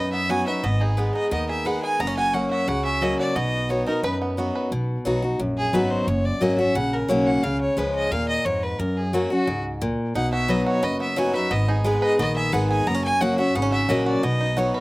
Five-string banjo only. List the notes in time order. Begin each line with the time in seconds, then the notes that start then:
Already playing: B3 D#4 B4
0.13 B3
0.30 F#4
0.48 B4
0.64 B3
0.81 D#4
0.98 B3
1.15 D#4
1.32 B3
1.49 G#4
1.66 B4
1.84 G#4
2.00 B3
2.07 C#4
2.18 F#4
2.34 C#4
2.51 F#4
2.69 F#4
2.86 C#4
3.02 F#4
3.19 F#4
3.36 B3
3.70 B3
3.87 D#4
4.04 B4
4.22 B3
4.38 F#4
4.55 B4
10.15 D#4
10.33 F#4
10.49 B4
10.66 F#4
10.83 B4
11.00 B3
11.17 F#4
11.34 B4
11.51 B3
11.68 D#4
11.85 G#4
12.02 B4
12.19 B3
12.37 G#4
12.53 B4
12.71 G#4
12.87 B3
12.94 C#4
13.21 F#4
13.39 F#4
13.55 B3
13.62 C#4
13.72 F#4
13.89 F#4
14.06 F#4
14.23 B3
14.41 D#4
14.57 F#4
14.74 B4